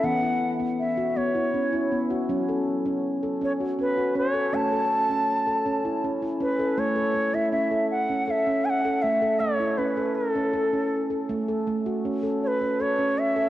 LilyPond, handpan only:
<<
  \new Staff \with { instrumentName = "Handpan" } { \time 6/8 \key a \major \tempo 4. = 53 b16 e'8 b8 fis'16 b16 e'16 cis'16 e'16 b16 fis'16 | cis'16 a'8 cis'8 a'16 cis'16 fis'16 cis'16 fis'16 cis'16 a'16 | cis'16 a'8 cis'8 a'16 cis'16 e'16 cis'16 e'16 cis'16 a'16 | a16 a'16 a16 e'16 cis'16 a'8 cis'16 a'16 cis'8 a'16 |
a16 a'16 a16 e'16 cis'16 a'8 cis'16 a'16 cis'8 a'16 | a16 a'16 a16 fis'16 cis'16 a'8 cis'16 a'16 cis'8 a'16 | }
  \new Staff \with { instrumentName = "Handpan" } { \clef bass \time 6/8 \key a \major e2. | fis2. | a2. | r2. |
r2. | r2. | }
>>